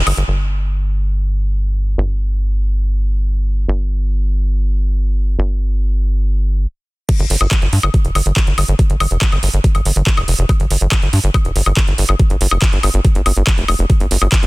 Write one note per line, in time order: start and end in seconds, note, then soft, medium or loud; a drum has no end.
0.07 0.13 G1 loud
0.07 open hi-hat loud
0.07 high woodblock soft
0.17 0.24 G1 medium
0.17 closed hi-hat medium
0.28 1.96 G1 medium
1.98 3.66 G1 medium
3.68 5.37 G1 medium
5.39 6.66 G1 medium
7.09 kick loud
7.09 closed hi-hat medium
7.09 crash loud
7.19 7.26 G1 medium
7.19 closed hi-hat medium
7.30 7.36 G1 loud
7.30 open hi-hat loud
7.41 7.47 G1 medium
7.41 closed hi-hat medium
7.41 high woodblock soft
7.51 kick loud
7.51 clap loud
7.51 closed hi-hat medium
7.62 7.68 G1 medium
7.62 closed hi-hat medium
7.73 7.79 G2 loud
7.73 open hi-hat loud
7.83 7.90 G1 medium
7.83 high woodblock medium
7.94 kick loud
7.94 closed hi-hat medium
8.05 8.11 F1 medium
8.05 closed hi-hat medium
8.15 8.22 G1 loud
8.15 open hi-hat loud
8.15 high woodblock soft
8.26 8.32 G1 medium
8.26 closed hi-hat medium
8.37 kick loud
8.37 clap loud
8.37 closed hi-hat medium
8.47 8.53 G1 medium
8.47 closed hi-hat medium
8.58 8.64 G1 loud
8.58 open hi-hat medium
8.58 high woodblock soft
8.68 8.75 G1 medium
8.68 closed hi-hat medium
8.79 kick loud
8.79 closed hi-hat medium
8.90 8.96 G1 medium
8.90 closed hi-hat medium
9.00 9.07 G1 loud
9.00 open hi-hat loud
9.00 high woodblock medium
9.11 9.17 F1 medium
9.11 closed hi-hat medium
9.22 kick loud
9.22 clap loud
9.22 closed hi-hat medium
9.32 9.39 G1 medium
9.32 closed hi-hat medium
9.32 high woodblock soft
9.43 9.49 G1 loud
9.43 open hi-hat loud
9.54 9.60 G1 medium
9.54 closed hi-hat medium
9.64 kick loud
9.64 closed hi-hat medium
9.75 9.81 G1 medium
9.75 closed hi-hat medium
9.75 high woodblock soft
9.85 9.92 G1 loud
9.85 open hi-hat loud
9.96 10.02 G1 medium
9.96 closed hi-hat medium
10.07 kick loud
10.07 clap loud
10.07 closed hi-hat medium
10.17 10.24 F1 medium
10.17 closed hi-hat medium
10.17 high woodblock medium
10.28 10.34 F1 loud
10.28 open hi-hat loud
10.39 10.45 F1 loud
10.39 closed hi-hat medium
10.49 kick loud
10.49 closed hi-hat medium
10.49 high woodblock soft
10.60 10.66 G1 medium
10.60 closed hi-hat medium
10.71 10.77 G1 loud
10.71 open hi-hat loud
10.81 10.88 G1 medium
10.81 closed hi-hat medium
10.92 kick loud
10.92 clap loud
10.92 closed hi-hat medium
10.92 high woodblock soft
11.02 11.09 G1 medium
11.02 closed hi-hat medium
11.13 11.19 G2 loud
11.13 open hi-hat loud
11.24 11.30 G1 medium
11.24 closed hi-hat medium
11.34 kick loud
11.34 closed hi-hat medium
11.34 high woodblock medium
11.45 11.51 F1 medium
11.45 closed hi-hat soft
11.56 11.62 G1 loud
11.56 open hi-hat loud
11.66 11.73 G1 medium
11.66 closed hi-hat medium
11.66 high woodblock soft
11.77 kick loud
11.77 clap loud
11.77 closed hi-hat medium
11.88 11.94 G1 medium
11.88 closed hi-hat medium
11.98 12.05 G1 loud
11.98 open hi-hat loud
12.09 12.15 G1 medium
12.09 closed hi-hat medium
12.09 high woodblock soft
12.19 kick loud
12.19 closed hi-hat medium
12.30 12.37 G1 medium
12.30 closed hi-hat medium
12.41 12.47 G1 loud
12.41 open hi-hat loud
12.51 12.58 F1 medium
12.51 closed hi-hat medium
12.51 high woodblock medium
12.62 kick loud
12.62 clap loud
12.62 closed hi-hat medium
12.73 12.79 G1 medium
12.73 closed hi-hat medium
12.83 12.90 G1 loud
12.83 open hi-hat loud
12.83 high woodblock soft
12.94 13.00 G1 medium
12.94 closed hi-hat medium
13.05 kick loud
13.05 closed hi-hat medium
13.15 13.22 G1 medium
13.15 closed hi-hat soft
13.26 13.32 G1 loud
13.26 open hi-hat loud
13.26 high woodblock soft
13.36 13.43 G1 medium
13.36 closed hi-hat medium
13.47 kick loud
13.47 clap loud
13.47 closed hi-hat medium
13.58 13.64 F1 medium
13.58 closed hi-hat medium
13.68 13.75 F1 medium
13.68 open hi-hat loud
13.68 high woodblock medium
13.79 13.85 F1 medium
13.79 closed hi-hat medium
13.90 kick loud
13.90 closed hi-hat medium
14.00 14.07 G1 medium
14.00 closed hi-hat soft
14.11 14.17 G1 loud
14.11 open hi-hat loud
14.22 14.28 G1 medium
14.22 high woodblock soft
14.32 kick loud
14.32 clap loud
14.32 closed hi-hat medium
14.43 14.47 G1 medium
14.43 closed hi-hat medium